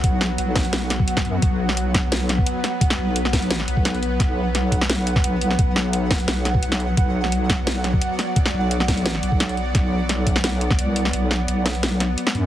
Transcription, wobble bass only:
0, 0, Header, 1, 2, 480
1, 0, Start_track
1, 0, Key_signature, 2, "minor"
1, 0, Tempo, 346821
1, 51, Time_signature, 4, 2, 24, 8
1, 17245, End_track
2, 0, Start_track
2, 0, Title_t, "Wobble bass"
2, 0, Program_c, 0, 39
2, 49, Note_on_c, 0, 35, 97
2, 512, Note_off_c, 0, 35, 0
2, 530, Note_on_c, 0, 35, 97
2, 1472, Note_off_c, 0, 35, 0
2, 1731, Note_on_c, 0, 42, 97
2, 1953, Note_off_c, 0, 42, 0
2, 1971, Note_on_c, 0, 35, 98
2, 3393, Note_off_c, 0, 35, 0
2, 4127, Note_on_c, 0, 35, 99
2, 4792, Note_off_c, 0, 35, 0
2, 4792, Note_on_c, 0, 34, 99
2, 5071, Note_off_c, 0, 34, 0
2, 5088, Note_on_c, 0, 35, 99
2, 5791, Note_off_c, 0, 35, 0
2, 5809, Note_on_c, 0, 35, 98
2, 7232, Note_off_c, 0, 35, 0
2, 7249, Note_on_c, 0, 35, 97
2, 7712, Note_off_c, 0, 35, 0
2, 7732, Note_on_c, 0, 35, 95
2, 8673, Note_off_c, 0, 35, 0
2, 8688, Note_on_c, 0, 35, 96
2, 9631, Note_off_c, 0, 35, 0
2, 9652, Note_on_c, 0, 35, 100
2, 11073, Note_off_c, 0, 35, 0
2, 11812, Note_on_c, 0, 35, 101
2, 12476, Note_off_c, 0, 35, 0
2, 12476, Note_on_c, 0, 34, 101
2, 12753, Note_off_c, 0, 34, 0
2, 12769, Note_on_c, 0, 35, 99
2, 13472, Note_off_c, 0, 35, 0
2, 13489, Note_on_c, 0, 35, 100
2, 14912, Note_off_c, 0, 35, 0
2, 14929, Note_on_c, 0, 36, 100
2, 15392, Note_off_c, 0, 36, 0
2, 15407, Note_on_c, 0, 35, 99
2, 15871, Note_off_c, 0, 35, 0
2, 15885, Note_on_c, 0, 35, 97
2, 16830, Note_off_c, 0, 35, 0
2, 17086, Note_on_c, 0, 42, 103
2, 17245, Note_off_c, 0, 42, 0
2, 17245, End_track
0, 0, End_of_file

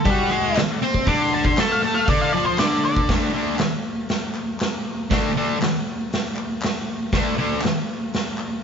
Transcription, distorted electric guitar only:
0, 0, Header, 1, 3, 480
1, 0, Start_track
1, 0, Tempo, 504626
1, 1012, Time_signature, 4, 2, 24, 8
1, 8214, End_track
2, 0, Start_track
2, 0, Title_t, "Distorted electric guitar"
2, 0, Program_c, 0, 30
2, 47, Note_on_c, 0, 55, 117
2, 51, Note_on_c, 0, 67, 110
2, 282, Note_off_c, 0, 55, 0
2, 284, Note_off_c, 0, 67, 0
2, 298, Note_on_c, 0, 56, 97
2, 311, Note_on_c, 0, 68, 111
2, 528, Note_off_c, 0, 56, 0
2, 534, Note_off_c, 0, 68, 0
2, 778, Note_on_c, 0, 60, 98
2, 794, Note_on_c, 0, 72, 108
2, 1008, Note_off_c, 0, 60, 0
2, 1013, Note_on_c, 0, 50, 106
2, 1016, Note_off_c, 0, 72, 0
2, 1027, Note_on_c, 0, 62, 122
2, 1486, Note_off_c, 0, 50, 0
2, 1493, Note_off_c, 0, 62, 0
2, 1504, Note_on_c, 0, 57, 97
2, 1521, Note_on_c, 0, 69, 111
2, 1731, Note_off_c, 0, 57, 0
2, 1740, Note_off_c, 0, 69, 0
2, 1751, Note_on_c, 0, 57, 93
2, 1763, Note_on_c, 0, 69, 96
2, 1975, Note_off_c, 0, 57, 0
2, 1981, Note_off_c, 0, 69, 0
2, 1988, Note_on_c, 0, 50, 111
2, 1997, Note_on_c, 0, 62, 122
2, 2214, Note_off_c, 0, 50, 0
2, 2218, Note_off_c, 0, 62, 0
2, 2230, Note_on_c, 0, 53, 100
2, 2249, Note_on_c, 0, 65, 118
2, 2454, Note_off_c, 0, 53, 0
2, 2462, Note_on_c, 0, 50, 96
2, 2464, Note_off_c, 0, 65, 0
2, 2475, Note_on_c, 0, 62, 96
2, 2931, Note_off_c, 0, 50, 0
2, 2937, Note_off_c, 0, 62, 0
2, 2944, Note_on_c, 0, 50, 92
2, 2953, Note_on_c, 0, 57, 93
2, 2970, Note_on_c, 0, 62, 95
2, 3131, Note_off_c, 0, 50, 0
2, 3136, Note_off_c, 0, 57, 0
2, 3144, Note_off_c, 0, 62, 0
2, 3173, Note_on_c, 0, 50, 91
2, 3183, Note_on_c, 0, 57, 101
2, 3192, Note_on_c, 0, 62, 102
2, 3366, Note_off_c, 0, 50, 0
2, 3370, Note_off_c, 0, 57, 0
2, 3375, Note_off_c, 0, 62, 0
2, 4855, Note_on_c, 0, 50, 90
2, 4862, Note_on_c, 0, 57, 95
2, 4866, Note_on_c, 0, 62, 103
2, 5047, Note_off_c, 0, 50, 0
2, 5051, Note_off_c, 0, 57, 0
2, 5053, Note_off_c, 0, 62, 0
2, 5105, Note_on_c, 0, 50, 93
2, 5106, Note_on_c, 0, 57, 109
2, 5117, Note_on_c, 0, 62, 97
2, 5292, Note_off_c, 0, 50, 0
2, 5293, Note_off_c, 0, 57, 0
2, 5298, Note_off_c, 0, 62, 0
2, 6786, Note_on_c, 0, 50, 91
2, 6796, Note_on_c, 0, 57, 100
2, 6806, Note_on_c, 0, 62, 99
2, 6972, Note_off_c, 0, 50, 0
2, 6977, Note_off_c, 0, 57, 0
2, 6982, Note_off_c, 0, 62, 0
2, 7022, Note_on_c, 0, 50, 98
2, 7041, Note_on_c, 0, 57, 93
2, 7044, Note_on_c, 0, 62, 97
2, 7210, Note_off_c, 0, 50, 0
2, 7220, Note_off_c, 0, 57, 0
2, 7221, Note_off_c, 0, 62, 0
2, 8214, End_track
3, 0, Start_track
3, 0, Title_t, "Muted distorted electric guitar strokes"
3, 553, Note_on_c, 9, 29, 59
3, 648, Note_off_c, 9, 29, 0
3, 8214, End_track
0, 0, End_of_file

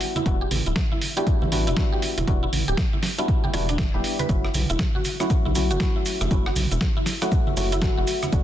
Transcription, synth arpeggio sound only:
0, 0, Header, 1, 2, 480
1, 0, Start_track
1, 0, Tempo, 504202
1, 247, Time_signature, 4, 2, 24, 8
1, 8030, End_track
2, 0, Start_track
2, 0, Title_t, "Synth arpeggio sound"
2, 0, Program_c, 0, 84
2, 152, Note_on_c, 0, 64, 97
2, 188, Note_off_c, 0, 64, 0
2, 392, Note_on_c, 0, 67, 104
2, 446, Note_off_c, 0, 67, 0
2, 632, Note_on_c, 0, 64, 76
2, 668, Note_off_c, 0, 64, 0
2, 872, Note_on_c, 0, 64, 95
2, 908, Note_off_c, 0, 64, 0
2, 1112, Note_on_c, 0, 67, 103
2, 1166, Note_off_c, 0, 67, 0
2, 1352, Note_on_c, 0, 64, 75
2, 1388, Note_off_c, 0, 64, 0
2, 1592, Note_on_c, 0, 64, 99
2, 1628, Note_off_c, 0, 64, 0
2, 1832, Note_on_c, 0, 67, 100
2, 1886, Note_off_c, 0, 67, 0
2, 2072, Note_on_c, 0, 64, 76
2, 2108, Note_off_c, 0, 64, 0
2, 2312, Note_on_c, 0, 64, 106
2, 2348, Note_off_c, 0, 64, 0
2, 2551, Note_on_c, 0, 67, 103
2, 2605, Note_off_c, 0, 67, 0
2, 2792, Note_on_c, 0, 64, 73
2, 2828, Note_off_c, 0, 64, 0
2, 3032, Note_on_c, 0, 64, 102
2, 3068, Note_off_c, 0, 64, 0
2, 3272, Note_on_c, 0, 67, 99
2, 3326, Note_off_c, 0, 67, 0
2, 3366, Note_on_c, 0, 52, 103
2, 3399, Note_off_c, 0, 52, 0
2, 3512, Note_on_c, 0, 62, 101
2, 3566, Note_off_c, 0, 62, 0
2, 3752, Note_on_c, 0, 71, 75
2, 3773, Note_off_c, 0, 71, 0
2, 3992, Note_on_c, 0, 71, 97
2, 4028, Note_off_c, 0, 71, 0
2, 4232, Note_on_c, 0, 64, 78
2, 4268, Note_off_c, 0, 64, 0
2, 4472, Note_on_c, 0, 64, 101
2, 4508, Note_off_c, 0, 64, 0
2, 4712, Note_on_c, 0, 66, 96
2, 4766, Note_off_c, 0, 66, 0
2, 4952, Note_on_c, 0, 64, 76
2, 4988, Note_off_c, 0, 64, 0
2, 5192, Note_on_c, 0, 64, 97
2, 5228, Note_off_c, 0, 64, 0
2, 5432, Note_on_c, 0, 66, 100
2, 5486, Note_off_c, 0, 66, 0
2, 5672, Note_on_c, 0, 64, 76
2, 5708, Note_off_c, 0, 64, 0
2, 5912, Note_on_c, 0, 64, 97
2, 5948, Note_off_c, 0, 64, 0
2, 6152, Note_on_c, 0, 66, 103
2, 6206, Note_off_c, 0, 66, 0
2, 6392, Note_on_c, 0, 64, 74
2, 6428, Note_off_c, 0, 64, 0
2, 6632, Note_on_c, 0, 64, 100
2, 6668, Note_off_c, 0, 64, 0
2, 6872, Note_on_c, 0, 66, 99
2, 6926, Note_off_c, 0, 66, 0
2, 7112, Note_on_c, 0, 64, 77
2, 7148, Note_off_c, 0, 64, 0
2, 7352, Note_on_c, 0, 64, 101
2, 7388, Note_off_c, 0, 64, 0
2, 7592, Note_on_c, 0, 66, 102
2, 7646, Note_off_c, 0, 66, 0
2, 7832, Note_on_c, 0, 64, 76
2, 7868, Note_off_c, 0, 64, 0
2, 8030, End_track
0, 0, End_of_file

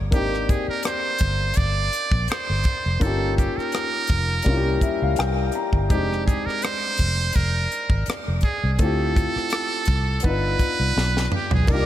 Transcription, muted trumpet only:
0, 0, Header, 1, 2, 480
1, 0, Start_track
1, 0, Tempo, 722892
1, 79, Time_signature, 4, 2, 24, 8
1, 7874, End_track
2, 0, Start_track
2, 0, Title_t, "Muted trumpet"
2, 0, Program_c, 0, 59
2, 93, Note_on_c, 0, 67, 87
2, 334, Note_on_c, 0, 68, 70
2, 343, Note_off_c, 0, 67, 0
2, 455, Note_off_c, 0, 68, 0
2, 462, Note_on_c, 0, 70, 79
2, 559, Note_off_c, 0, 70, 0
2, 568, Note_on_c, 0, 72, 91
2, 1040, Note_on_c, 0, 74, 103
2, 1050, Note_off_c, 0, 72, 0
2, 1519, Note_off_c, 0, 74, 0
2, 1527, Note_on_c, 0, 72, 87
2, 2003, Note_on_c, 0, 69, 88
2, 2013, Note_off_c, 0, 72, 0
2, 2237, Note_off_c, 0, 69, 0
2, 2241, Note_on_c, 0, 67, 66
2, 2375, Note_on_c, 0, 70, 91
2, 2385, Note_off_c, 0, 67, 0
2, 3683, Note_off_c, 0, 70, 0
2, 3918, Note_on_c, 0, 67, 83
2, 4141, Note_off_c, 0, 67, 0
2, 4159, Note_on_c, 0, 68, 77
2, 4289, Note_on_c, 0, 70, 88
2, 4299, Note_off_c, 0, 68, 0
2, 4402, Note_on_c, 0, 72, 107
2, 4412, Note_off_c, 0, 70, 0
2, 4885, Note_on_c, 0, 70, 87
2, 4895, Note_off_c, 0, 72, 0
2, 5362, Note_off_c, 0, 70, 0
2, 5601, Note_on_c, 0, 68, 75
2, 5797, Note_off_c, 0, 68, 0
2, 5797, Note_on_c, 0, 68, 60
2, 5846, Note_on_c, 0, 69, 93
2, 5856, Note_off_c, 0, 68, 0
2, 6802, Note_off_c, 0, 69, 0
2, 6806, Note_on_c, 0, 71, 94
2, 7496, Note_off_c, 0, 71, 0
2, 7536, Note_on_c, 0, 67, 76
2, 7648, Note_off_c, 0, 67, 0
2, 7664, Note_on_c, 0, 68, 73
2, 7779, Note_on_c, 0, 70, 94
2, 7789, Note_off_c, 0, 68, 0
2, 7874, Note_off_c, 0, 70, 0
2, 7874, End_track
0, 0, End_of_file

